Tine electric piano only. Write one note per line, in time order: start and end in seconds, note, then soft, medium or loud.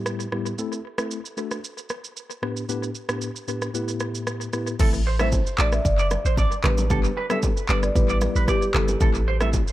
0.00 0.26 A2 medium
0.00 0.26 G3 medium
0.00 0.26 B3 medium
0.00 0.26 E4 medium
0.00 0.26 G4 loud
0.32 0.52 A2 medium
0.32 0.52 G3 medium
0.32 0.52 B3 medium
0.32 0.52 E4 medium
0.32 0.52 G4 medium
0.58 0.78 A3 medium
0.58 0.79 C4 medium
0.58 0.79 E4 medium
0.58 0.79 A4 loud
0.98 1.18 A3 medium
0.98 1.18 C4 medium
0.98 1.18 E4 medium
0.98 1.18 A4 medium
1.37 1.57 A3 medium
1.37 1.57 D4 medium
1.37 1.58 F#4 medium
1.37 1.58 A4 medium
2.42 2.63 A2 medium
2.42 2.63 B3 medium
2.42 2.63 D4 medium
2.42 2.63 G4 medium
2.42 2.63 B4 medium
2.69 2.89 A2 medium
2.69 2.89 B3 medium
2.69 2.89 D4 medium
2.69 2.89 G4 medium
2.69 2.89 B4 loud
3.09 3.28 A2 medium
3.09 3.29 B3 medium
3.09 3.29 D4 medium
3.09 3.29 G4 medium
3.09 3.29 B4 medium
3.48 3.68 A2 medium
3.48 3.68 B3 medium
3.48 3.68 D4 medium
3.48 3.68 G4 medium
3.48 3.68 B4 medium
3.74 4.47 A2 medium
3.74 4.47 B3 medium
3.74 4.47 E4 medium
3.74 4.47 G4 medium
3.74 4.47 B4 loud
4.53 4.73 A2 medium
4.53 4.73 B3 medium
4.53 4.73 E4 medium
4.53 4.73 G4 medium
4.53 4.74 B4 medium
4.79 4.99 A3 loud
4.79 5.00 C4 medium
4.79 5.00 E4 medium
4.79 5.00 A4 loud
5.19 5.39 A3 medium
5.19 5.39 C4 medium
5.19 5.39 E4 medium
5.19 5.39 A4 medium
5.58 5.79 A3 medium
5.58 5.79 D4 medium
5.58 5.79 F#4 medium
5.58 5.79 A4 medium
6.64 6.84 G3 medium
6.64 6.84 B3 medium
6.64 6.84 D4 medium
6.64 6.84 G4 medium
6.90 7.10 G3 medium
6.90 7.10 B3 medium
6.90 7.10 D4 medium
6.90 7.10 G4 loud
7.30 7.50 G3 medium
7.30 7.50 B3 medium
7.30 7.50 D4 medium
7.30 7.50 G4 medium
7.69 7.89 G3 medium
7.69 7.89 B3 medium
7.69 7.89 D4 medium
7.69 7.89 G4 medium
7.95 8.68 G3 loud
7.95 8.68 B3 medium
7.95 8.68 E4 medium
7.95 8.69 G4 loud
8.74 8.94 G3 medium
8.74 8.94 B3 medium
8.74 8.94 E4 medium
8.74 8.95 G4 medium
9.00 9.21 A3 loud
9.00 9.21 C4 medium
9.00 9.21 E4 medium
9.00 9.21 A4 loud
9.40 9.60 A3 medium
9.40 9.60 C4 medium
9.40 9.60 E4 medium
9.40 9.60 A4 medium